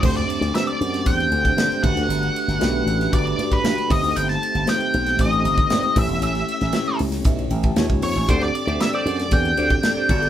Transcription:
<<
  \new Staff \with { instrumentName = "Lead electric guitar" } { \time 4/4 \key d \mixolydian \tempo 4 = 116 c''16 d''8. e''16 d''8. g''4. fis''8~ | fis''2 d''8. b'8. ees''8 | g''16 a''8. g''4 ees''4. e''8 | e''4. r2 des''8 |
c''16 d''8. e''16 d''8. g''2 | }
  \new Staff \with { instrumentName = "Clean electric guitar" } { \time 4/4 \key d \mixolydian r1 | r1 | r1 | r1 |
<g' c'' d''>8 r16 <g' c'' e''>16 r16 <g' c'' d''>16 <g' c'' d''>16 r8. <g' c'' d''>8 r16 <g' c'' d''>16 <b fis' a'>8 | }
  \new Staff \with { instrumentName = "Tine electric piano" } { \time 4/4 \key d \mixolydian << { r1 | r1 | r1 | r2 <b' e''>8 <cis'' g''>16 <e'' a''>8 r8. |
r1 | } \\ { <a c' d' g' c''>8 r8 <a c' d' g' c''>8 r8 <a c' d' g' c''>8 r8 <a c' d' g' c''>8 <a d' fis' g' b'>8~ | <a d' fis' g' b'>8 r8 <a d' fis' g' b'>8 r8 <a d' fis' g' b'>8 r8 <a d' fis' g' b'>8 <a c' ees' g' c''>8~ | <a c' ees' g' c''>8 r8 <a c' ees' g' c''>8 r8 <a c' ees' g' c''>8 r8 <a c' ees' g' c''>8 <a cis' e' g' b' cis''>8~ | <a cis' e' g' b' cis''>8 r8 <a cis' e' g' cis''>8 r4. <bes ees' f' g' des''>8 r8 |
<c' d' g' a' d''>8 r8 <c' d' g' a' d''>8 r8 <c' d' g' a' d''>8 r8 <c' d' g' a' d''>8 <b fis' g' a' d''>8 | } >> }
  \new Staff \with { instrumentName = "Slap bass" } { \clef bass \time 4/4 \key d \mixolydian d,8 r16 d,16 r8 fis,8 e,8 d,8 d16 r16 g,,16 d,16 | g,,8 r16 g,,16 b,,8 a,,8 g,,8 g,8 g,16 r16 g,,16 d,16 | g,,8 r16 g,,16 r8 b,,8 a,,8 g,,8 g,16 r16 a,,16 e,,16 | a,,8 r16 a,,16 r8 cis,8 b,,8 a,,8 ees,16 des,16 f,16 a,,16 |
d,8 r16 d,16 r8 fis,8 e,8 d,8 r8 g,,8 | }
  \new DrumStaff \with { instrumentName = "Drums" } \drummode { \time 4/4 <cymc bd>16 <cymr sn>16 cymr16 <cymr sn>16 <cymr sn>16 cymr16 cymr16 <cymr sn>16 <bd cymr>16 cymr16 cymr16 <bd cymr>16 <cymr sn>16 cymr16 <cymc bd>16 cymr16 | <hhp cymr>16 cymr16 cymr16 <cymr sn>16 <cymr sn>8 cymr16 <cymr sn>16 <bd cymr>16 cymr16 cymr16 <bd cymr>16 <cymr sn>16 cymr16 <hho bd cymr>16 cymr16 | <hhp cymr>16 <cymr sn>16 cymr16 cymr16 <cymr sn>16 cymr16 cymr16 <cymr sn>16 <bd cymr>16 cymr16 cymr16 <bd cymr>16 <cymr sn>16 cymr16 <hho bd cymr>16 cymr16 | <hhp cymr>16 <cymr sn>16 cymr16 <cymr sn>16 <cymr sn>16 cymr16 <hho cymr>16 <cymr sn>16 <hhp bd cymr>16 cymr16 cymr16 <bd cymr>16 <cymr sn>16 <bd cymr>16 <hho cymr>16 cymr16 |
<hhp bd cymr>16 <cymr sn>16 cymr16 cymr16 <cymr sn>16 cymr16 cymr16 <cymr sn>16 <bd cymr>16 cymr16 cymr16 <bd cymr>16 <cymr sn>8 <cymc bd>16 cymr16 | }
>>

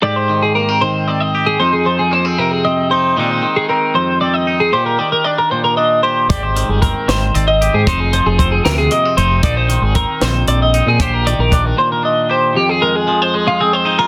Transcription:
<<
  \new Staff \with { instrumentName = "Clean electric guitar" } { \time 6/8 \key f \dorian \tempo 4. = 77 d''16 c''8 aes'16 bes'8 c''8 d''16 ees''8 aes'16 | c''16 aes'16 c''16 aes'16 c''16 aes'16 bes'16 aes'16 ees''8 c''8 | d''16 c''8 aes'16 bes'8 c''8 d''16 ees''8 aes'16 | c''16 bes'16 d''16 bes'16 d''16 bes'16 c''16 bes'16 ees''8 c''8 |
d''16 c''8 aes'16 bes'8 c''8 d''16 ees''8 aes'16 | c''16 aes'16 c''16 aes'16 c''16 aes'16 bes'16 aes'16 ees''8 c''8 | d''16 c''8 aes'16 bes'8 c''8 d''16 ees''8 aes'16 | c''16 bes'16 d''16 bes'16 d''16 bes'16 c''16 bes'16 ees''8 c''8 |
g'16 aes'16 bes'16 aes'8 c''16 aes'16 f'16 aes'16 c''8 bes'16 | }
  \new Staff \with { instrumentName = "Clean electric guitar" } { \time 6/8 \key f \dorian << { g'4 bes16 c'8. c'8 g'8 | ees'4 bes16 c'8. c'8 ees'8 | <ees aes c' ees'>4 c'4 c'8 ees'8 | g'4 d'4 d'8 g'8 |
g'4 c'4 c'8 g'8 | ees'4 c'4 bes16 c'16 ees'8 | ees'4 c'4 c'8 ees'8 | g'4 d'4 d'8 g'8 |
r8 aes4 aes8 c'8 ees'16 f'16 | } \\ { aes,8 ees4 ees4. | f,8 f4 c4. | bes,8 ees4 f,4. | bes,8 ees4 bes,4. |
aes,8 ees4 ees4. | f,8 f4 c4. | bes,8 ees4 f,4. | bes,8 ees4 bes,4. |
f,4 f2 | } >> }
  \new Staff \with { instrumentName = "Fingered electric bass" } { \clef bass \time 6/8 \key f \dorian r2. | r2. | r2. | r2. |
aes,,8. g,,8 r16 aes,,8 aes,,8. aes,16 | f,,8. f,,8. d,8 r8 f,,8 | bes,,8. aes,,8 r16 bes,,8 bes,,8. bes,16 | bes,,8. bes,,8. r4. |
r2. | }
  \new DrumStaff \with { instrumentName = "Drums" } \drummode { \time 6/8 r4. r4. | r4. r4. | r4. r4. | r4. r4. |
<hh bd>8 hh8 <hh bd>8 <hh sn>8 hh8 hh8 | <hh bd>8 hh8 <hh bd>8 <hh sn>8 hh8 hh8 | <hh bd>8 hh8 <hh bd>8 <hh sn>8 hh8 hh8 | <hh bd>8 hh8 <hh bd>8 r4. |
r4. r4. | }
>>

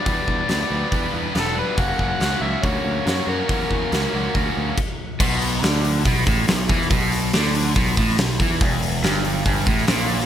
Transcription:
<<
  \new Staff \with { instrumentName = "Harmonica" } { \time 4/4 \key b \minor \tempo 4 = 140 d''2~ d''8 r8 a'8 b'8 | fis''4. e''8 cis''4. ais'8~ | ais'2~ ais'8 r4. | r1 |
r1 | r1 | }
  \new Staff \with { instrumentName = "Overdriven electric guitar" } { \time 4/4 \key b \minor <g b d' g' b'>4 <g b d' g' b'>8 <g b d' g' b'>8 <g b d' g' b'>4 <g b d' g' b'>8 <g b d' g' b'>8 | <fis ais cis' fis'>4 <fis ais cis' fis'>8 <fis ais cis' fis'>8 <fis ais cis' fis'>4 <fis ais cis' fis'>8 <fis ais cis' fis'>8 | <fis ais cis' fis'>4 <fis ais cis' fis'>8 <fis ais cis' fis'>8 <fis ais cis' fis'>4 r4 | b,4 d4 b,8 a,8 b,8 e8 |
b,4 d4 b,8 a,8 b,8 e8 | e,4 g,4 g,8 a,8 bes,4 | }
  \new Staff \with { instrumentName = "Picked electric bass" } { \clef bass \time 4/4 \key b \minor e,8 e,8 d,8 d,8 e,8 e,8 e,,4 | fis,,8 fis,,8 cis,8 cis,8 d,8 d,8 fis,8 fis,8 | e,8 e,8 cis,8 cis,8 d,8 d,8 r4 | b,,4 d,4 b,,8 a,,8 b,,8 e,8 |
b,,4 d,4 b,,8 a,,8 b,,8 e,8 | e,,4 g,,4 g,,8 a,,8 bes,,4 | }
  \new DrumStaff \with { instrumentName = "Drums" } \drummode { \time 4/4 <hho bd>8 bd8 <hho sn>4 <hho bd>4 <hho sn>4 | <hho bd>8 bd8 <hho sn>4 <hho bd>4 <hho sn>4 | <hho bd>8 bd8 <hho sn>4 <hho bd>4 <cymc bd>4 | <cymc bd>8 hho8 <hho sn>8 hho8 <hho bd>8 <hho bd>8 <hho sn>8 <hho bd>16 sn16 |
<hho bd>8 hho8 <hho sn>8 hho8 <hho bd>8 <hho bd>16 sn16 <hho sn>8 <hho bd>8 | <hho bd>8 hho8 <hho sn>8 hho8 <hho bd>8 <hho bd>16 sn16 <hho sn>8 hho16 sn16 | }
>>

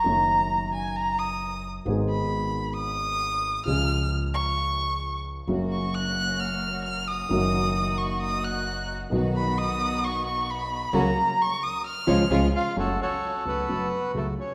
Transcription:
<<
  \new Staff \with { instrumentName = "Violin" } { \time 4/4 \key fis \major \tempo 4 = 132 ais''4. gis''8 ais''8 dis'''4 r8 | r8 b''4. dis'''2 | eis'''4 r8 cis'''2 r8 | r8 cis'''8 fis'''4 eis'''4 eis'''8 dis'''8~ |
dis'''4. cis'''8 dis'''8 fis'''4 r8 | r8 b''8 dis'''4 cis'''8 cis'''8 b''4 | ais''4 cis'''8 dis'''8 eis'''4. eis'8 | \key fis \minor cis'8 cis'4 b4. a8 cis'8 | }
  \new Staff \with { instrumentName = "Bandoneon" } { \time 4/4 \key fis \major << { r1 | r1 | r1 | r1 |
r1 | r1 | r2. r8 eis''8 | \key fis \minor cis''8 cis''4 b'4. a'8 cis''8 | } \\ { r1 | r1 | r1 | r1 |
r1 | r1 | r1 | <fis' a'>8 <fis' a'>4 fis'2 r8 | } >> }
  \new Staff \with { instrumentName = "String section" } { \time 4/4 \key fis \major r1 | r1 | r1 | <ais cis' fis'>1 |
<ais dis' fis'>1 | <b dis' fis'>1 | <ais cis' fis'>8 r2 <gis cis' eis'>8 <gis cis' eis'>8 r8 | \key fis \minor r1 | }
  \new Staff \with { instrumentName = "Grand piano" } { \clef bass \time 4/4 \key fis \major <fis, dis fis ais fis'>1 | <gis,, gis, dis gis b gis'>1 | <cis, cis eis gis cis' gis'>1 | <fis, cis fis ais fis'>1 |
<fis, dis fis ais fis'>1 | <b,, b, dis fis b fis'>1 | <cis fis ais>8 r2 <cis eis gis>8 <cis eis gis>8 r8 | \key fis \minor <fis, cis fis a fis'>8 r4 <cis, cis fis a fis'>8 <fis, cis fis a fis'>8 r8 <cis, cis fis a fis'>8 r8 | }
  \new Staff \with { instrumentName = "Upright bass" } { \clef bass \time 4/4 \key fis \major fis,,1 | gis,,1 | cis,1 | fis,,1 |
fis,,1 | b,,1 | cis,8 r2 cis,8 cis,8 r8 | \key fis \minor fis,,8 r4 cis,8 fis,,8 r8 cis,8 r8 | }
>>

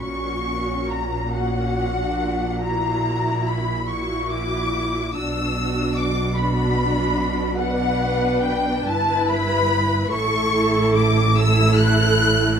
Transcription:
<<
  \new Staff \with { instrumentName = "Violin section" } { \time 6/8 \key fis \phrygian \tempo 4. = 48 cis'''4 ais''8 fis''4. | ais''4 b''8 cis'''8 d'''4 | e'''4 d'''8 b''4. | \key a \mixolydian fis''4 g''8 a''8 b''4 |
cis'''4 d'''8 e'''8 fis'''4 | }
  \new Staff \with { instrumentName = "Violin section" } { \time 6/8 \key fis \phrygian cis'''4 ais''8 fis''4. | ais''4 b''8 cis'''8 d'''4 | e'''4 d'''8 b''4. | \key a \mixolydian fis''4 g''8 a''8 b''4 |
cis'''4 d'''8 e'''8 fis'''4 | }
  \new Staff \with { instrumentName = "Viola section" } { \time 6/8 \key fis \phrygian << { fis'4. fis'4. | fis'4. fis'4. | fis'4. fis'4. | \key a \mixolydian b'4. b'4. |
a'4. a'4. | } \\ { cis'4. cis'8. d'8. | e'4. e'4. | d'4. d'4. | d'4. e'4. |
e'4. e'4. | } >> }
  \new Staff \with { instrumentName = "Cello section" } { \clef bass \time 6/8 \key fis \phrygian ais,2.~ | ais,2. | b,2.~ | \key a \mixolydian b,4. g,4. |
a,2. | }
  \new Staff \with { instrumentName = "Double bass section" } { \clef bass \time 6/8 \key fis \phrygian ais,,2.~ | ais,,2. | b,,2.~ | \key a \mixolydian b,,4. g,,4. |
a,,2. | }
>>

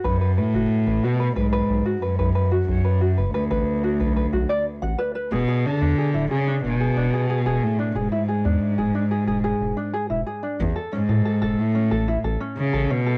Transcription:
<<
  \new Staff \with { instrumentName = "Ukulele" } { \time 4/4 \key b \dorian \tempo 4 = 91 b'16 b'16 b'16 fis'8 b'16 fis'16 b'16 b'16 b'8 fis'16 b'16 b'16 b'16 fis'16~ | fis'16 b'16 fis'16 b'16 b'16 b'8 fis'16 b'16 b'16 fis'16 d''16 r16 fis''16 b'16 b'16 | gis'16 gis'8 d'16 gis'16 e'16 gis'16 d'8 gis'16 d'16 gis'16 gis'16 gis'8 d'16 | gis'16 e'16 gis'16 d'8 gis'16 d'16 gis'16 gis'16 gis'8 d'16 gis'16 e'16 gis'16 d'16 |
r16 a'16 cis'16 a'16 a'16 a'8 cis'16 a'16 e'16 a'16 cis'8 a'16 cis'16 a'16 | }
  \new Staff \with { instrumentName = "Cello" } { \clef bass \time 4/4 \key b \dorian fis,8 a,4 b,8 gis,4 fis,4 | fis,4 d,2~ d,8 r8 | b,8 d4 cis8 b,4. a,8 | gis,2.~ gis,8 r8 |
e,8 gis,4 a,4 r8 cis8 b,8 | }
  \new Staff \with { instrumentName = "Analog synth bass" } { \clef bass \time 4/4 \key b \dorian b,,16 r8 fis,,16 r16 a,,16 r8 b,,8 b,,16 r8 b,,16 r8 | b,,16 r8 fis,,16 r16 a,,16 r8 b,,8 b,,16 r8 a,,16 r8 | e,,16 r8 e,16 r16 d,,16 r8 e,,8 e,,16 r8 e,,16 r8 | e,,16 r8 e,16 r16 d,,16 r8 e,,8 e,,16 r8 e,,16 r8 |
a,,16 r8 a,16 r16 e,,16 r8 a,,8 a,,16 r8 a,,16 r8 | }
>>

